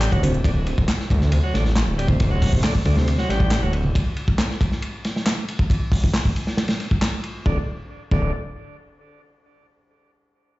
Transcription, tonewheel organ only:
0.00 0.11 G3 loud
0.12 0.22 F#3 medium
0.45 0.51 D3 medium
1.33 1.38 C3 medium
1.44 1.53 F#3 medium
1.54 1.64 D3 medium
1.98 2.08 G3 medium
2.09 2.30 C3 medium
2.31 2.52 F#3 medium
2.53 2.63 C3 medium
2.64 2.74 D3 loud
2.86 2.96 D3 loud
2.97 3.18 C3 medium
3.19 3.29 F#3 medium
3.30 3.61 G3 loud
3.63 3.72 F#3 medium
7.46 7.58 D3 medium
8.12 8.32 D3 medium

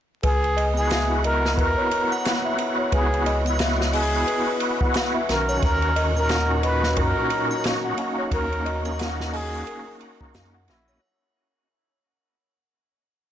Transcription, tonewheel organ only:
0.74 2.54 B3 medium
0.79 2.57 E4 medium
0.79 2.59 F#4 medium
2.56 3.40 B3 medium
2.62 3.43 E4 medium
2.62 3.45 F#4 medium
3.43 5.24 B3 medium
3.50 5.27 E4 medium
3.50 5.28 F#4 medium
5.29 6.13 D#3 medium
5.29 6.11 C#4 medium
5.35 6.14 F#4 medium
6.13 7.94 A#2 medium
6.13 7.95 C#4 medium
6.19 7.97 D#4 medium
6.19 7.98 F#4 medium
7.94 8.79 A#3 medium
7.94 8.80 C#4 medium
8.01 8.82 D#4 medium
8.01 8.84 F#4 medium
8.82 10.63 A#3 medium
8.82 10.64 C#4 medium
8.88 10.66 D#4 medium
8.88 10.67 F#4 medium
10.66 10.99 A#3 medium
10.66 11.00 C#4 medium
10.66 11.01 D#5 medium
10.71 11.02 F#4 medium

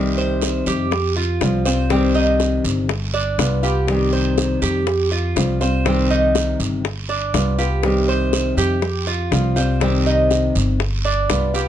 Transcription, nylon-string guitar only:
0.00 0.90 C3 medium
0.00 0.91 D#3 medium
0.00 0.91 G3 medium
0.00 0.91 C4 medium
0.00 0.92 G4 medium
0.91 muted nylon-string guitar stroke medium
1.41 1.65 F3 medium
1.41 1.65 G3 medium
1.41 1.65 C4 medium
1.41 1.64 F4 medium
1.65 1.90 G3 medium
1.65 1.90 C4 medium
1.65 1.89 F4 medium
1.90 2.88 C3 medium
1.90 2.88 D#3 medium
1.90 2.89 G3 medium
1.90 2.89 C4 medium
1.90 2.90 G4 medium
2.89 muted nylon-string guitar stroke medium
3.38 3.62 G3 soft
3.38 3.63 B3 medium
3.38 3.62 F4 medium
3.63 3.88 B3 medium
3.63 3.87 F4 medium
3.87 4.86 C3 medium
3.87 4.86 D#3 medium
3.87 4.87 G3 medium
3.87 4.86 C4 medium
3.87 4.87 G4 medium
4.87 muted nylon-string guitar stroke medium
5.36 5.60 F3 medium
5.36 5.60 G3 medium
5.36 5.60 C4 medium
5.36 5.59 F4 medium
5.61 5.85 G3 medium
5.61 5.85 C4 medium
5.61 5.84 F4 medium
5.85 6.83 C3 medium
5.85 6.84 D#3 medium
5.85 6.84 G3 medium
5.85 6.84 C4 medium
5.85 6.85 G4 medium
6.84 muted nylon-string guitar stroke medium
7.34 7.58 G3 medium
7.34 7.58 B3 medium
7.34 7.57 F4 medium
7.58 7.83 B3 medium
7.58 7.82 F4 medium
7.83 8.81 C3 medium
7.83 8.81 D#3 medium
7.83 8.82 G3 medium
7.83 8.81 C4 medium
7.83 8.82 G4 medium
8.82 muted nylon-string guitar stroke medium
9.31 9.55 F3 medium
9.31 9.56 G3 soft
9.31 9.56 C4 medium
9.31 9.55 F4 medium
9.56 9.81 G3 medium
9.56 9.81 C4 medium
9.56 9.80 F4 medium
9.80 10.79 C3 medium
9.80 10.79 D#3 medium
9.80 10.80 G3 medium
9.80 10.80 C4 medium
9.80 10.80 G4 medium
10.80 muted nylon-string guitar stroke medium
11.29 11.53 G3 soft
11.29 11.54 B3 medium
11.29 11.53 F4 medium
11.54 11.68 B3 medium
11.54 11.68 F4 medium

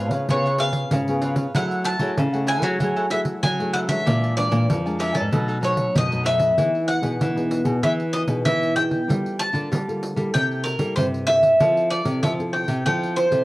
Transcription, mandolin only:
0.00 0.32 F5 medium
0.30 0.59 C#5 medium
0.60 1.55 F5 medium
1.56 1.85 F#5 medium
1.85 2.45 A5 loud
2.48 3.08 G#5 loud
3.11 3.20 E5 medium
3.43 3.72 G#5 medium
3.74 3.79 F#5 medium
3.89 4.33 E5 medium
4.37 4.96 D5 medium
5.00 5.15 E5 medium
5.15 5.90 A4 medium
5.64 5.96 C#5 medium
5.97 6.25 D#5 medium
6.26 6.91 E5 medium
6.88 7.83 F#5 medium
7.83 7.92 E5 medium
8.13 8.22 D#5 medium
8.45 8.75 E5 medium
8.76 9.39 G5 loud
9.39 10.34 A5 loud
10.34 10.64 G5 loud
10.64 10.94 A#4 medium
10.96 11.05 C5 medium
11.27 11.90 E5 loud
11.91 12.20 D5 medium
12.23 12.31 E5 medium
12.53 12.83 G5 loud
12.86 13.18 G5 medium
13.16 13.44 C5 medium

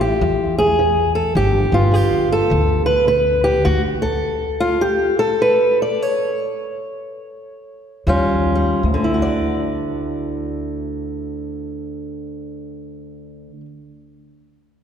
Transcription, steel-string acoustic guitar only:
0.00 0.17 E3 medium
0.00 1.34 A3 soft
0.00 0.58 G4 medium
0.22 0.75 E2 medium
0.58 1.15 G#4 loud
0.79 1.32 E3 medium
1.15 1.36 A4 medium
1.36 1.89 G2 medium
1.36 1.92 G4 medium
1.72 3.63 B3 soft
1.72 2.51 F4 medium
1.92 2.46 D3 medium
1.92 2.32 G4 medium
2.32 2.85 A4 loud
2.50 3.03 D3 medium
2.86 3.07 B4 loud
3.07 3.61 D3 medium
3.07 3.44 B4 loud
3.44 3.65 G4 medium
3.65 4.14 D2 medium
3.65 3.81 F#4 loud
4.02 4.81 A4 medium
4.60 4.82 F4 loud
4.81 5.19 G4 loud
5.19 6.03 A4 loud
5.42 5.82 B4 loud
5.82 6.02 D5 loud
6.02 8.06 C#5 loud
8.07 8.78 D#2 medium
8.07 8.54 G3 medium
8.07 8.80 C#4 medium
8.07 8.81 F4 medium
8.55 8.84 G3 medium
8.85 13.50 D2 medium
8.94 13.55 D3 medium
9.04 13.60 E4 medium
9.14 13.65 F#4 medium
9.22 13.65 D5 medium

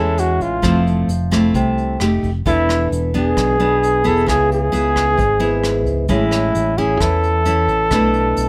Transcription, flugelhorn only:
0.00 0.21 A4 medium
0.19 0.44 F#4 medium
0.42 0.87 F4 medium
2.47 2.88 E4 medium
3.18 4.08 G#4 medium
4.07 4.28 A4 medium
4.29 4.49 G#4 medium
4.52 5.84 G#4 medium
6.12 6.80 E4 medium
6.78 7.02 G#4 medium
7.00 8.49 A4 loud

